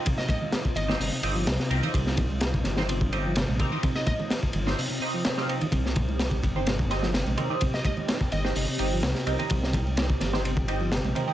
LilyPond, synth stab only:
\new Staff \with { instrumentName = "Synth stab" } { \time 4/4 \key c \minor \tempo 4 = 127 r4. r16 <c' ees' g' c''>16 r8 <c' ees' g' ees''>16 r8. <c' ees' g' bes'>16 <c' ees' g' ees''>16 | r4. r16 <c' ees' g' c''>16 r8 <c' ees' g' ees''>16 r8. <c' ees' g' bes'>16 <c' ees' g' ees''>16 | r4. r16 <c' ees' g' c''>16 r8 <c' ees' g' ees''>8. <c' ees' g' f''>16 <c' ees' g' ees''>16 r16 | r4. r16 <c' ees' g' c''>16 r8 <c' ees' g' ees''>16 r8. <c' ees' g' bes'>16 <c' ees' g' ees''>16 |
r4. r16 <c' ees' g' c''>16 r8 <c' ees' g' ees''>16 r8. <c' ees' g' bes'>16 <c' ees' g' ees''>16 | r4. r16 <c' ees' g' c''>16 r8 <c' ees' g' ees''>16 r8. <c' ees' g' bes'>16 <c' ees' g' ees''>16 | }